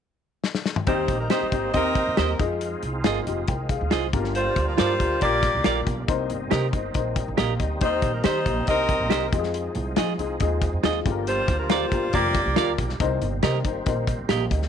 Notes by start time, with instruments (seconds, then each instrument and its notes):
0.44 snare
0.55 snare
0.66 snare
0.76 mid tom
0.87 upright bass D#2, upright piano D#3 C4 D#4 G4, saxophone section G3 D#4 C5, tonewheel organ A#3 C4 D#4 G4, kick, closed hi-hat
1.08 upright bass A#1, kick, closed hi-hat
1.19 saxophone section G3 D#4 A#4
1.30 saxophone section G3 D#4 C5, upright piano C4 D#4 G4, clean electric guitar G4 C5 D#5, snare, closed hi-hat
1.42 muted upright bass stroke
1.52 upright bass G#1, upright piano C4 D#4 G4, kick, closed hi-hat
1.73 upright bass D#2, upright piano C4 D#4 G4, saxophone section C4 A#4 D#5, kick, closed hi-hat
1.95 kick, closed hi-hat
2.07 upright bass F2
2.17 upright bass D#2, upright piano C4 D#4 A#4, clean electric guitar G4 C5 D#5, snare, closed hi-hat
2.39 upright bass F2, tonewheel organ G#3 C4 D#4 F4, upright piano D#4 F4 G#4, kick, closed hi-hat
2.61 closed hi-hat
2.83 upright bass C2, closed hi-hat
3.04 upright bass G1, upright piano D#4 F4 A#4, clean electric guitar F4 G#4 D#5, snare, closed hi-hat
3.26 upright bass F1, upright piano D#4 F4 G4, closed hi-hat
3.48 upright bass C2, upright piano A#4 G5, kick, closed hi-hat
3.69 upright piano G#4 F5, kick, closed hi-hat
3.81 upright bass D2
3.91 upright bass C2, upright piano D#4 C5, clean electric guitar F4 G#4 D#5, snare, closed hi-hat
4.13 upright bass G1, upright piano G2 F4 G4 A#4, tonewheel organ G3 A#3 D4, kick, closed hi-hat
4.24 snare
4.35 saxophone section G3 F4 C5, closed hi-hat
4.56 upright bass D2, kick, closed hi-hat
4.68 saxophone section G3 F4 A#4
4.77 upright bass G2, saxophone section G3 F4 C5, upright piano F4 G4 A#4, clean electric guitar F4 A#4 D5, snare, closed hi-hat
4.99 upright bass D2, upright piano F4 G4 A#4, kick, closed hi-hat
5.21 upright bass A#1, saxophone section A#3 G4 D5, upright piano F4 G4 A#4, kick, closed hi-hat
5.43 kick, snare, closed hi-hat
5.55 upright bass C2
5.64 upright bass A#1, upright piano F4 G4 A#4, clean electric guitar F4 A#4 D5, snare, closed hi-hat
5.87 upright bass B1, kick, closed hi-hat
6.07 upright bass C2, upright piano C3 D#4 A#4 C5, tonewheel organ C4 D#4, kick, closed hi-hat
6.30 upright bass G1, closed hi-hat
6.51 upright bass C3, upright piano D#4 A#4 C5, clean electric guitar G4 A#4 D#5, snare, closed hi-hat
6.73 upright bass G1, upright piano D#4 A#4 C5, kick, closed hi-hat
6.94 upright bass A#1, upright piano D#4 A#4 C5, kick, closed hi-hat
7.16 upright piano A#4 G5, kick, closed hi-hat
7.28 upright bass G#1
7.37 upright bass A#1, clean electric guitar G4 A#4 D#5, upright piano F5, snare, closed hi-hat
7.59 upright bass D2, upright piano G4 D#5, kick, closed hi-hat
7.81 upright bass D#2, upright piano D#3 D#4 G4 C5, saxophone section G3 D#4 C5, tonewheel organ A#3, kick, closed hi-hat
8.02 upright bass A#1, kick, closed hi-hat
8.14 saxophone section G3 D#4 A#4
8.24 upright bass D#3, saxophone section G3 D#4 C5, upright piano D#4 G4 C5, clean electric guitar G4 C5 D#5, snare, closed hi-hat
8.46 upright bass A#1, upright piano D#4 G4 C5, kick, closed hi-hat
8.67 upright bass C2, saxophone section C4 A#4 D#5, upright piano D#4 G4 C5, kick, closed hi-hat
8.89 kick, closed hi-hat
9.00 upright bass A#1
9.10 upright bass C2, upright piano D#4 G4 C5, clean electric guitar G4 C5 D#5, snare, closed hi-hat
9.32 upright bass F2, tonewheel organ F3 G#3 D#4, upright piano D#4 F4 G4, kick, closed hi-hat
9.39 upright piano G#4
9.43 snare
9.54 closed hi-hat
9.75 upright bass C2, closed hi-hat
9.96 upright bass F3, upright piano D#4 F4 G#4, clean electric guitar F4 G#4 D#5, snare, closed hi-hat
10.19 upright bass C2, upright piano D#4 F4 G#4, closed hi-hat
10.40 upright bass D#2, upright piano D#4 F4 G#4, kick, closed hi-hat
10.62 kick, closed hi-hat
10.73 upright bass F2
10.83 upright bass D#2, upright piano D#4 F4 G#4, clean electric guitar F4 G#4 D#5, snare, closed hi-hat
11.05 upright bass G1, upright piano G2 F4 G4 A4, tonewheel organ G3 A#3 D4, kick, closed hi-hat
11.12 upright piano A#4
11.27 saxophone section G3 F4 C5, closed hi-hat
11.48 upright bass D2, kick, closed hi-hat
11.60 saxophone section G3 F4 A#4
11.70 saxophone section G3 F4 C5, clean electric guitar F4 A#4 D5, upright piano F4 G4 A#4, snare, closed hi-hat
11.91 upright bass G1, upright piano F4 G4 A#4, kick, closed hi-hat
12.13 upright bass F1, saxophone section A#3 G4 D5, upright piano F4 G4 A#4, kick, closed hi-hat
12.35 kick, snare, closed hi-hat
12.46 upright bass C2
12.56 upright bass D2, clean electric guitar F4 A#4 D5, upright piano F4 G4 A#4, snare, closed hi-hat
12.78 upright bass B1, kick, closed hi-hat
12.89 snare
13.00 upright bass C2, upright piano C3 D#4 A#4 C5, tonewheel organ D#3 A#3 C4, kick, closed hi-hat
13.22 upright bass G1, closed hi-hat
13.43 upright bass C3, upright piano D#4 A#4 C5, clean electric guitar G4 A#4 D#5, snare, closed hi-hat
13.65 upright bass G1, upright piano D#4 A#4 C5, kick, closed hi-hat
13.86 upright bass A#1, upright piano D#4 A#4 C5, kick, closed hi-hat
14.07 kick, closed hi-hat
14.19 upright bass G#1
14.29 upright bass A#1, clean electric guitar G4 A#4 D#5, upright piano F5, snare, closed hi-hat
14.51 upright bass D2, upright piano G4 D#5, kick, closed hi-hat
14.62 snare